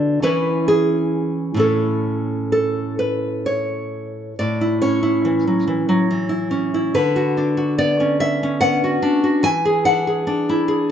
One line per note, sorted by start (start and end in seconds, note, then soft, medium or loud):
0.00 0.20 D3 medium
0.00 0.20 B3 soft
0.00 0.20 F#4 medium
0.00 0.20 D5 medium
0.22 1.54 E3 medium
0.22 1.55 C#4 soft
0.22 1.56 E4 soft
0.22 0.67 B4 medium
0.68 1.57 G#4 medium
1.54 4.32 A2 soft
1.54 4.33 C#4 soft
1.54 4.34 E4 soft
1.60 2.50 A4 medium
2.52 2.98 A4 medium
2.99 3.44 B4 soft
3.46 4.35 C#5 medium
4.39 6.91 A2 soft
4.39 4.81 D5 medium
4.61 5.01 E4 soft
4.82 6.09 C#4 soft
4.82 6.90 C#5 medium
5.03 6.28 E4 soft
5.25 5.47 E3 soft
5.47 5.67 F#3 soft
5.67 5.88 E3 soft
5.89 6.95 F#3 soft
6.11 6.94 E3 soft
6.29 6.73 E4 soft
6.51 6.94 C#4 soft
6.74 6.95 E4 soft
6.94 9.02 D3 medium
6.94 7.75 B4 medium
7.16 7.56 F#4 soft
7.37 8.63 D4 soft
7.57 7.78 F#4 soft
7.78 8.20 B3 soft
7.78 8.19 D5 medium
8.00 8.42 C#4 soft
8.20 8.60 B3 soft
8.20 8.60 E5 medium
8.43 9.46 C#4 soft
8.61 9.44 B3 soft
8.61 9.41 F#5 medium
8.84 9.22 F#4 soft
9.02 9.44 D4 soft
9.24 9.44 F#4 soft
9.43 10.91 E3 medium
9.43 9.84 G#5 medium
9.65 10.06 G#4 soft
9.85 10.26 D4 soft
9.85 10.91 F#5 medium
10.07 10.67 G#4 soft
10.27 10.91 D4 soft
10.49 10.91 E4 soft
10.68 10.91 G#4 soft